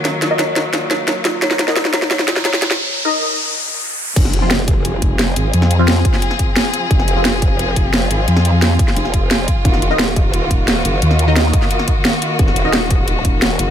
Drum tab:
CC |----------------|----------------|----------------|x---------------|
HH |x-x-x-x-x-x-x-x-|x-x-x-x-x-x-x-x-|----------------|x-x-x-x-x-x-x-x-|
SD |o-o-o-o-o-o-o-o-|oooooooooooooooo|----------------|-o--o-------o---|
BD |----------------|----------------|----------------|o-----o---o-----|

CC |----------------|----------------|----------------|----------------|
HH |x-x-x-x-x-x-x-x-|x-x-x-x-x-x-x-x-|x-x-x-x-x-x-x-x-|x-x-x-x-x-x-x-x-|
SD |-o--o--o-o--o---|-o--o-------o---|-o--o--o-o--o---|-o--o-------o---|
BD |------o---o-----|o-----o---o-----|------o---o---o-|o-----o---o-----|

CC |----------------|----------------|
HH |x-x-x-x-x-x-x-x-|x-x-x-x-x-x-x-x-|
SD |-o--o--o-o--o---|-o--o-------o---|
BD |------o---o-----|o-----o---o-----|